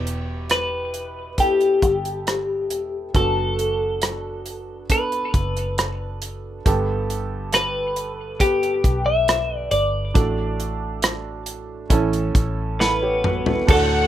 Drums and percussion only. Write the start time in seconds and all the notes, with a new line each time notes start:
0.07 closed hi-hat
0.50 cross-stick, closed hi-hat
0.94 closed hi-hat
1.38 kick, closed hi-hat
1.61 closed hi-hat
1.82 kick, closed hi-hat
2.05 closed hi-hat
2.27 cross-stick, closed hi-hat
2.70 closed hi-hat
3.15 kick, closed hi-hat
3.59 closed hi-hat
4.02 cross-stick, closed hi-hat
4.46 closed hi-hat
4.90 kick, closed hi-hat
5.12 closed hi-hat
5.34 kick, closed hi-hat
5.57 closed hi-hat
5.78 cross-stick, closed hi-hat
6.22 closed hi-hat
6.66 kick, closed hi-hat
7.10 closed hi-hat
7.53 cross-stick, closed hi-hat
7.96 closed hi-hat
8.40 kick, closed hi-hat
8.63 closed hi-hat
8.84 kick, closed hi-hat
9.28 cross-stick, closed hi-hat
9.71 closed hi-hat
10.15 kick, closed hi-hat
10.60 closed hi-hat
11.02 cross-stick, closed hi-hat
11.46 closed hi-hat
11.90 kick, closed hi-hat
12.13 closed hi-hat
12.35 kick, closed hi-hat
12.81 snare
13.24 mid tom
13.46 floor tom
13.68 kick, crash